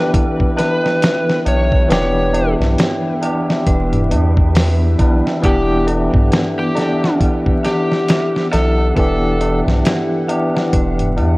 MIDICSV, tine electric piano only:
0, 0, Header, 1, 2, 480
1, 0, Start_track
1, 0, Key_signature, 1, "minor"
1, 0, Tempo, 882353
1, 1036, Time_signature, 4, 2, 24, 8
1, 6189, End_track
2, 0, Start_track
2, 0, Title_t, "Tine electric piano"
2, 0, Program_c, 0, 4
2, 0, Control_c, 0, 64, 127
2, 0, Note_on_c, 0, 52, 82
2, 0, Note_on_c, 0, 59, 68
2, 0, Note_on_c, 0, 62, 73
2, 0, Note_on_c, 0, 67, 88
2, 1005, Note_off_c, 0, 52, 0
2, 1009, Note_off_c, 0, 59, 0
2, 1012, Note_off_c, 0, 62, 0
2, 1017, Note_off_c, 0, 67, 0
2, 1023, Note_on_c, 0, 52, 89
2, 1031, Note_on_c, 0, 59, 87
2, 1037, Note_on_c, 0, 62, 87
2, 1045, Note_on_c, 0, 67, 108
2, 1726, Note_off_c, 0, 52, 0
2, 1730, Note_off_c, 0, 59, 0
2, 1733, Note_off_c, 0, 62, 0
2, 1737, Note_off_c, 0, 67, 0
2, 1750, Note_on_c, 0, 52, 73
2, 1757, Note_on_c, 0, 59, 71
2, 1761, Note_on_c, 0, 62, 68
2, 1769, Note_on_c, 0, 67, 84
2, 2693, Note_off_c, 0, 52, 0
2, 2696, Note_off_c, 0, 59, 0
2, 2698, Note_off_c, 0, 62, 0
2, 2703, Note_off_c, 0, 67, 0
2, 2713, Note_on_c, 0, 52, 75
2, 2718, Note_on_c, 0, 59, 68
2, 2719, Note_on_c, 0, 62, 71
2, 2722, Note_on_c, 0, 71, 82
2, 2931, Note_off_c, 0, 52, 0
2, 2933, Note_off_c, 0, 59, 0
2, 2934, Note_off_c, 0, 62, 0
2, 2935, Note_off_c, 0, 71, 0
2, 2950, Note_on_c, 0, 52, 93
2, 2956, Note_on_c, 0, 59, 82
2, 2963, Note_on_c, 0, 62, 83
2, 2969, Note_on_c, 0, 67, 105
2, 3649, Note_off_c, 0, 52, 0
2, 3652, Note_off_c, 0, 59, 0
2, 3656, Note_off_c, 0, 62, 0
2, 3658, Note_off_c, 0, 67, 0
2, 3673, Note_on_c, 0, 52, 77
2, 3679, Note_on_c, 0, 59, 70
2, 3686, Note_on_c, 0, 62, 72
2, 3695, Note_on_c, 0, 67, 82
2, 4851, Note_off_c, 0, 52, 0
2, 4853, Note_off_c, 0, 59, 0
2, 4857, Note_off_c, 0, 62, 0
2, 4862, Note_off_c, 0, 67, 0
2, 4872, Note_on_c, 0, 52, 94
2, 4880, Note_on_c, 0, 59, 87
2, 4886, Note_on_c, 0, 62, 84
2, 4893, Note_on_c, 0, 67, 104
2, 5570, Note_off_c, 0, 52, 0
2, 5574, Note_off_c, 0, 59, 0
2, 5577, Note_off_c, 0, 62, 0
2, 5580, Note_off_c, 0, 67, 0
2, 5588, Note_on_c, 0, 52, 78
2, 5594, Note_on_c, 0, 59, 71
2, 5603, Note_on_c, 0, 62, 70
2, 5608, Note_on_c, 0, 67, 84
2, 6189, Note_off_c, 0, 52, 0
2, 6189, Note_off_c, 0, 59, 0
2, 6189, Note_off_c, 0, 62, 0
2, 6189, Note_off_c, 0, 67, 0
2, 6189, End_track
0, 0, End_of_file